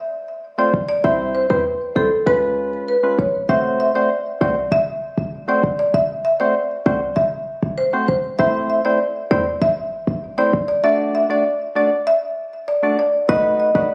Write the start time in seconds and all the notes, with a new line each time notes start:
Already playing: E5
0.58 A3 C4 F4 C5 D5
0.74 F1
0.89 D5
1.04 C2 G3 C4 E4 C5 E5
1.35 C5
1.50 E2 G3 C4 E4 B4 C5
1.95 C2 G3 C4 E4 A4 C5
2.26 C#2 G#3 C#4 F4 B4
2.88 B4
3.03 G#3 C#4 F4 B4
3.19 A#1 C#5
3.49 F#1 A3 C4 F#4 C5 E5
3.80 E5
3.95 A3 C4 F#4 C5 D5
4.41 C2 A3 C4 F#4 C5 D5
4.72 F#1 E5
5.18 F#1
5.48 A3 C4 F#4 C5 D5
5.63 F#1
5.79 D5
5.94 F#1 E5
6.25 E5
6.40 A3 C4 F#4 C5 D5
6.86 C2 A3 C4 F#4 C5 D5
7.16 F#1 E5
7.63 F#1
7.78 C5
7.93 A3 C4 F#4 C5
8.08 F#1 C5
8.39 A1 A3 C4 E4 C5 E5
8.70 E5
8.85 A3 C4 E4 C5 D5
9.31 E2 A3 C4 E4 C5 D5
9.62 A1 E5
10.07 A1
10.38 A3 C4 E4 C5 D5
10.53 A1
10.68 D5
10.83 A3 D4 F#4 D5 E5
11.15 E5
11.29 A3 D4 F#4 D5
11.75 A3 D4 F#4 D5
12.07 E5
12.68 D5
12.83 A3 D4 F#4 D5
12.99 D5
13.29 B1 A3 D#4 F#4 B4 D#5
13.60 D#5
13.75 A1 A3 D#4 F#4 B4 D5